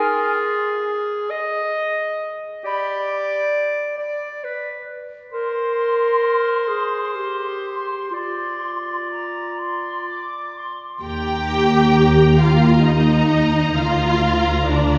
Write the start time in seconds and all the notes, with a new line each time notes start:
Already playing: F4 G#4 G#5
1.30 D#5
2.64 G4 D5 B5
3.98 D5
4.44 B4
5.32 A#4 C5 C6
6.68 G#4
7.15 G4 C6
8.11 F4 D5 C6
9.10 A#5
9.59 C6
10.08 D6
10.56 C6
11.03 D#2 G4 G5 A#5
12.39 F4 F5
12.84 D#4 D#5
13.76 D2 F4 F5
14.67 D4 D5